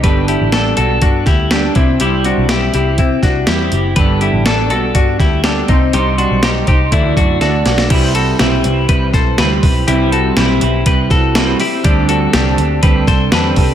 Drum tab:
CC |----------------|----------------|----------------|----------------|
HH |x-x-x-x-x-x-x-x-|x-x-x-x-x-x-x-x-|x-x-x-x-x-x-x-x-|x-x-x-x-x-x-x-x-|
SD |----o-----o-o---|----o-----o-o---|----o-----o-o---|----o-------o-oo|
BD |o-------o-o---o-|--------o-o-----|o-------o-o---o-|------o-o-o-----|

CC |x---------------|----------------|----------------|
HH |x-x-x-x-x-x-x-o-|x-x-x-x-x-x-x-o-|x-x-x-x-x-x-x-o-|
SD |----o-----o-o---|----o-----o-o---|----o-----o-o---|
BD |o-------o-o---o-|--------o-o-----|o-------o-o---o-|